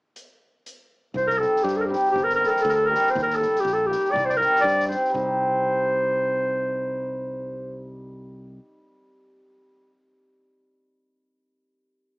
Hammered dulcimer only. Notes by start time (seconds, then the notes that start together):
1.39 G3 C4 D#4 G4
1.89 G3 C4 D#4 G4
2.38 G3 A#3 D4 G4
2.89 G3 A#3 D4 G4
3.40 G3 A#3 D#4 G4
3.89 G3 A#3 D#4 G4
4.38 G3 C4 D#4 G4
4.88 G3 C4 D#4 G4
5.10 G3 C4
5.15 D#4 G4